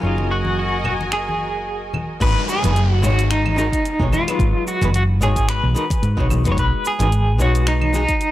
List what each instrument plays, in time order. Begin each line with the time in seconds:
Already playing: clean electric guitar F4
0.00 fretless electric bass F#1, hollow-body jazz guitar F#3 A#3 C#4, string section F#4 A#4 D#5 G#5
0.04 hollow-body jazz guitar D#4 G#4
0.18 muted conga
0.31 clean electric guitar F#4
0.45 high conga
0.59 clean electric guitar F#4
0.84 clean electric guitar F#4, low conga, claves
1.01 muted conga
1.12 clean electric guitar G#4, finger snap
1.29 high conga
1.93 high conga, low conga, claves
2.20 fretless electric bass G#1, hollow-body jazz guitar G#3 B3 D#4 F#4 B4, clean electric guitar B4, kick, closed hi-hat, crash, downlifter, shaker
2.49 clean electric guitar G#4, shaker
2.62 fretless electric bass F#1, hollow-body jazz guitar G#3 B3 D#4 F#4 B4, closed hi-hat, muted conga, high conga, shaker
2.76 closed hi-hat, shaker
2.93 clean electric guitar F#4
3.02 fretless electric bass G#1, hollow-body jazz guitar G#3 B3 D#4 F#4 C#5, clean electric guitar F#4, low conga, shaker
3.19 closed hi-hat, shaker
3.31 clean electric guitar D#4, finger snap, closed hi-hat, shaker
3.46 high conga, claves
3.56 hollow-body jazz guitar G#3 B3 D#4 F#4 A#4, clean electric guitar D#4, muted conga, shaker
3.72 kick, closed hi-hat, shaker
3.85 closed hi-hat, shaker
3.99 fretless electric bass B1, hollow-body jazz guitar G#3 B3 D#4 F#4 C#5, kick
4.12 clean electric guitar F4, high conga, low conga, claves, shaker
4.27 hollow-body jazz guitar F#3 G#3 B3 D#4 B4, closed hi-hat, claves, shaker
4.39 fretless electric bass G#1, kick, closed hi-hat, shaker
4.67 clean electric guitar F#4, shaker
4.81 fretless electric bass F#1, hollow-body jazz guitar G#3 B3 D#4 F#4 B4, closed hi-hat, muted conga, high conga, shaker
4.94 clean electric guitar F#4, closed hi-hat, shaker
5.21 fretless electric bass G#1, hollow-body jazz guitar G#3 B3 D#4 F#4 C#5, clean electric guitar G#4, low conga, shaker
5.36 kick, closed hi-hat, shaker
5.49 clean electric guitar B4, finger snap, closed hi-hat, shaker
5.63 fretless electric bass B1, high conga
5.75 hollow-body jazz guitar G#3 B3 D#4 F#4 A#4, shaker
5.90 kick, closed hi-hat, muted conga, shaker
6.03 fretless electric bass G#2, closed hi-hat, shaker
6.17 fretless electric bass B1, hollow-body jazz guitar G#3 B3 D#4 F#4 C#5, kick
6.30 high conga, low conga, claves, shaker
6.44 fretless electric bass F#1, hollow-body jazz guitar G#3 B3 D#4 F#4 B4, closed hi-hat, muted conga, shaker
6.52 clean electric guitar C#5
6.57 fretless electric bass B1, clean electric guitar B4, kick, closed hi-hat, shaker
6.85 clean electric guitar G#4, shaker
6.99 fretless electric bass G#1, hollow-body jazz guitar G#3 B3 D#4 F#4 B4, closed hi-hat, muted conga, high conga, shaker
7.12 closed hi-hat, shaker
7.38 fretless electric bass B1, hollow-body jazz guitar G#3 B3 D#4 F#4 C#5, clean electric guitar F#4, low conga, shaker
7.55 closed hi-hat, shaker
7.67 clean electric guitar D#4, finger snap, closed hi-hat, shaker
7.81 high conga, claves
7.93 hollow-body jazz guitar G#3 B3 D#4 F#4 G#4, clean electric guitar D#4, muted conga, shaker
8.09 kick, closed hi-hat, shaker
8.21 closed hi-hat, shaker